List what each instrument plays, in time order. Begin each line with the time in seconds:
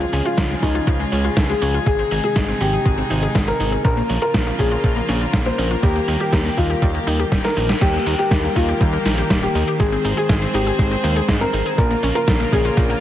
Already playing: string section C#3 F3 G#3 F4 G#4, grand piano F4
0.00 synth arpeggio sound G#3, closed hi-hat
0.13 analog synth bass C#2, synth arpeggio sound C#4, open hi-hat
0.25 synth arpeggio sound F4, grand piano F4, closed hi-hat
0.38 analog synth bass C#2, synth arpeggio sound F3, kick, snare, closed hi-hat
0.50 synth arpeggio sound G#3
0.62 analog synth bass C#2, synth arpeggio sound C#4, grand piano D#4, kick, open hi-hat
0.75 synth arpeggio sound F4, closed hi-hat
0.87 analog synth bass C#2, synth arpeggio sound F3, kick, closed hi-hat
1.00 synth arpeggio sound G#3, closed hi-hat
1.12 analog synth bass C#2, synth arpeggio sound C#4, open hi-hat
1.24 synth arpeggio sound F4, closed hi-hat
1.37 analog synth bass C#2, synth arpeggio sound F3, kick, snare, closed hi-hat
1.49 synth arpeggio sound G#3, grand piano G#4
1.62 analog synth bass C#2, synth arpeggio sound C#4, open hi-hat
1.74 synth arpeggio sound F4, closed hi-hat
1.86 analog synth bass G#1, string section C3 D#3 D#4, synth arpeggio sound G#3, grand piano G#4, kick, closed hi-hat
1.99 synth arpeggio sound C4, closed hi-hat
2.11 analog synth bass G#1, synth arpeggio sound D#4, open hi-hat
2.24 synth arpeggio sound G#4, grand piano G#4, closed hi-hat
2.36 analog synth bass G#1, synth arpeggio sound G#3, kick, snare, closed hi-hat
2.48 synth arpeggio sound C4
2.61 analog synth bass G#1, synth arpeggio sound D#4, grand piano G4, open hi-hat
2.73 synth arpeggio sound G#4, closed hi-hat
2.85 analog synth bass G#1, synth arpeggio sound G#3, kick, closed hi-hat
2.98 synth arpeggio sound C4, closed hi-hat
3.10 analog synth bass G#1, synth arpeggio sound D#4, open hi-hat
3.23 synth arpeggio sound G#4, closed hi-hat
3.35 analog synth bass G#1, synth arpeggio sound G#3, kick, snare, closed hi-hat
3.47 synth arpeggio sound C4, grand piano A#4
3.60 analog synth bass G#1, synth arpeggio sound D#4, open hi-hat
3.72 synth arpeggio sound G#4, closed hi-hat
3.85 analog synth bass A#1, string section C#3 F3 A#3 F4 A#4, synth arpeggio sound F3, grand piano A#4, kick, closed hi-hat
3.97 synth arpeggio sound A#3, closed hi-hat
4.09 analog synth bass A#1, synth arpeggio sound C#4, open hi-hat
4.22 synth arpeggio sound F4, grand piano A#4, closed hi-hat
4.34 analog synth bass A#1, synth arpeggio sound F3, kick, snare, closed hi-hat
4.47 synth arpeggio sound A#3
4.59 analog synth bass A#1, synth arpeggio sound C#4, grand piano G#4, kick, open hi-hat
4.71 synth arpeggio sound F4, closed hi-hat
4.84 analog synth bass A#1, synth arpeggio sound F3, kick, closed hi-hat
4.96 synth arpeggio sound A#3, closed hi-hat
5.09 analog synth bass A#1, synth arpeggio sound C#4, open hi-hat
5.21 synth arpeggio sound F4, closed hi-hat
5.33 analog synth bass A#1, synth arpeggio sound F3, kick, snare, closed hi-hat
5.46 synth arpeggio sound A#3, grand piano C5
5.58 analog synth bass A#1, synth arpeggio sound C#4, open hi-hat
5.71 synth arpeggio sound F4, closed hi-hat
5.83 analog synth bass D#2, string section D#3 G3 G4, synth arpeggio sound G3, grand piano G4, kick, closed hi-hat
5.96 synth arpeggio sound A#3, closed hi-hat
6.08 analog synth bass D#2, synth arpeggio sound D#4, open hi-hat
6.20 synth arpeggio sound G4, grand piano G4, closed hi-hat
6.33 analog synth bass D#2, synth arpeggio sound G3, kick, snare, closed hi-hat
6.45 synth arpeggio sound A#3, open hi-hat
6.57 analog synth bass D#2, synth arpeggio sound D#4, grand piano F4, kick, open hi-hat
6.70 synth arpeggio sound G4, closed hi-hat
6.82 analog synth bass D#2, synth arpeggio sound G3, kick, closed hi-hat
6.95 synth arpeggio sound A#3, closed hi-hat
7.07 analog synth bass D#2, synth arpeggio sound D#4, open hi-hat
7.19 synth arpeggio sound G4, closed hi-hat
7.32 analog synth bass D#1, synth arpeggio sound G3, kick, snare, closed hi-hat
7.44 synth arpeggio sound A#3, grand piano A#4, snare, closed hi-hat
7.57 analog synth bass A#1, synth arpeggio sound D#4, open hi-hat
7.69 synth arpeggio sound G4, snare, closed hi-hat
7.81 analog synth bass D#2, string section D#3 G3 A#3 G4 A#4, synth arpeggio sound G3, grand piano G4, kick, closed hi-hat, crash, cabasa
7.94 synth arpeggio sound A#3, closed hi-hat, cabasa
8.06 analog synth bass D#2, synth arpeggio sound D#4, open hi-hat, cabasa
8.19 synth arpeggio sound G4, grand piano G4, closed hi-hat, cabasa
8.31 analog synth bass D#2, synth arpeggio sound G3, kick, snare, closed hi-hat, cabasa
8.43 synth arpeggio sound A#3, cabasa
8.56 analog synth bass D#2, synth arpeggio sound D#4, grand piano F4, kick, open hi-hat, cabasa
8.68 synth arpeggio sound G4, closed hi-hat, cabasa
8.81 analog synth bass D#2, synth arpeggio sound G3, kick, closed hi-hat, cabasa
8.93 synth arpeggio sound A#3, closed hi-hat, cabasa
9.05 analog synth bass A#1, synth arpeggio sound D#4, snare, open hi-hat, cabasa
9.18 synth arpeggio sound G4, closed hi-hat, cabasa
9.30 analog synth bass D#1, synth arpeggio sound G3, kick, snare, closed hi-hat, cabasa
9.43 synth arpeggio sound A#3, grand piano G4, cabasa
9.55 analog synth bass D#2, synth arpeggio sound D#4, open hi-hat, cabasa
9.67 synth arpeggio sound G4, closed hi-hat, cabasa
9.80 analog synth bass G#1, synth arpeggio sound G#3, string section G#3 C4 G#4 C5, grand piano G#4, kick, closed hi-hat, cabasa
9.92 synth arpeggio sound C4, closed hi-hat, cabasa
10.05 analog synth bass G#1, synth arpeggio sound D#4, open hi-hat, cabasa
10.17 grand piano G#4, synth arpeggio sound G#4, closed hi-hat, cabasa
10.29 analog synth bass G#1, synth arpeggio sound G#3, kick, snare, closed hi-hat, cabasa
10.42 synth arpeggio sound C4, cabasa
10.54 analog synth bass G#1, synth arpeggio sound D#4, grand piano G4, open hi-hat, cabasa
10.67 synth arpeggio sound G#4, closed hi-hat, cabasa
10.79 analog synth bass G#1, synth arpeggio sound G#3, kick, closed hi-hat, cabasa
10.91 synth arpeggio sound C4, closed hi-hat, cabasa
11.04 analog synth bass D#2, synth arpeggio sound D#4, open hi-hat, cabasa
11.16 synth arpeggio sound G#4, closed hi-hat, cabasa
11.29 analog synth bass G#2, synth arpeggio sound G#3, kick, snare, closed hi-hat, cabasa
11.41 synth arpeggio sound C4, grand piano A#4, cabasa
11.53 analog synth bass G#1, synth arpeggio sound D#4, open hi-hat, cabasa
11.66 synth arpeggio sound G#4, closed hi-hat, cabasa
11.78 analog synth bass A#1, string section C#3 F3 A#3 F4 A#4, synth arpeggio sound F3, grand piano A#4, kick, closed hi-hat, cabasa
11.91 synth arpeggio sound A#3, closed hi-hat, cabasa
12.03 analog synth bass A#1, synth arpeggio sound C#4, open hi-hat, cabasa
12.15 synth arpeggio sound F4, grand piano A#4, closed hi-hat, cabasa
12.28 analog synth bass A#1, synth arpeggio sound F3, kick, snare, closed hi-hat, cabasa
12.40 synth arpeggio sound A#3, cabasa
12.52 analog synth bass A#1, synth arpeggio sound C#4, grand piano G#4, kick, open hi-hat, cabasa
12.65 synth arpeggio sound F4, closed hi-hat, cabasa
12.77 analog synth bass A#1, synth arpeggio sound F3, kick, closed hi-hat, cabasa
12.90 synth arpeggio sound A#3, closed hi-hat, cabasa